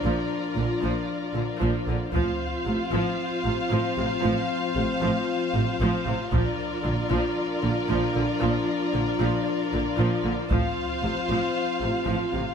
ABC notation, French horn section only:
X:1
M:4/4
L:1/8
Q:1/4=115
K:F
V:1 name="French horn section" clef=bass
[F,D]8 | [F,C]8- | [F,C]8 | [F,D]8- |
[F,D]8 | [F,C]8 |]